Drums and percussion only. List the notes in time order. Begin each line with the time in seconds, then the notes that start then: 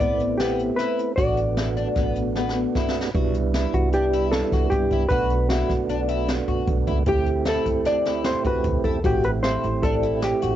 0.00 kick, closed hi-hat
0.20 closed hi-hat
0.40 snare, closed hi-hat
0.59 closed hi-hat
0.79 snare, closed hi-hat
0.99 closed hi-hat
1.18 kick, closed hi-hat
1.37 closed hi-hat
1.57 snare, closed hi-hat
1.77 closed hi-hat
1.96 kick, snare, closed hi-hat
2.15 closed hi-hat
2.35 snare
2.49 snare
2.75 kick, snare
2.89 snare
3.01 snare
3.15 kick, closed hi-hat
3.34 closed hi-hat
3.54 snare, closed hi-hat
3.74 kick, closed hi-hat
3.92 closed hi-hat
4.13 closed hi-hat
4.32 snare, closed hi-hat
4.52 kick, snare, closed hi-hat
4.71 kick, closed hi-hat
4.90 kick, closed hi-hat
5.09 kick, closed hi-hat
5.30 closed hi-hat
5.50 snare, closed hi-hat
5.69 kick, snare, closed hi-hat
5.89 closed hi-hat
6.08 closed hi-hat
6.29 snare, closed hi-hat
6.48 kick, closed hi-hat
6.67 kick, closed hi-hat
6.87 kick, closed hi-hat
7.06 kick, closed hi-hat
7.26 closed hi-hat
7.45 snare, closed hi-hat
7.66 kick, closed hi-hat
7.85 snare, closed hi-hat
8.05 snare, closed hi-hat
8.24 snare, closed hi-hat
8.45 kick, closed hi-hat
8.64 kick, closed hi-hat
8.84 kick, closed hi-hat
9.04 kick, closed hi-hat
9.23 closed hi-hat
9.44 snare, closed hi-hat
9.63 closed hi-hat
9.83 kick, closed hi-hat
10.03 closed hi-hat
10.22 snare, closed hi-hat
10.42 closed hi-hat